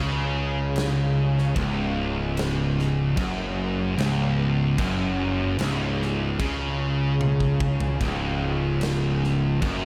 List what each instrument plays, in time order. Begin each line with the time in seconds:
Already playing: picked electric bass C#2, distorted electric guitar C#3
0.76 snare, crash
1.38 snare
1.55 picked electric bass C#1, distorted electric guitar C#2, kick, crash
2.37 snare, crash
2.79 snare
3.17 picked electric bass F#1, distorted electric guitar F#2, kick, crash
3.97 picked electric bass C#1, distorted electric guitar C#2, snare, crash
4.78 picked electric bass F#1, distorted electric guitar F#2, kick, crash
5.58 picked electric bass C#1, distorted electric guitar C#2, snare, crash
6.02 snare
6.39 picked electric bass C#2, distorted electric guitar C#3, kick, crash
7.21 high tom
7.40 kick
7.60 kick
7.80 floor tom
8.01 picked electric bass C#1, distorted electric guitar C#2, kick, crash
8.81 snare, crash
9.24 snare
9.62 picked electric bass F#1, distorted electric guitar F#2, kick, crash